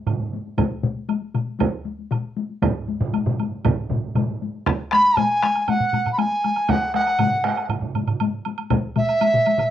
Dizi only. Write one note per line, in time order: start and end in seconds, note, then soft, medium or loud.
4.92 5.19 B5 medium
5.18 5.62 G#5 medium
5.62 5.70 G#5 medium
5.69 6.12 F#5 medium
6.12 6.19 B5 medium
6.18 6.71 G#5 medium
6.69 6.95 F#5 medium
6.95 7.66 F#5 medium
8.97 9.70 E5 medium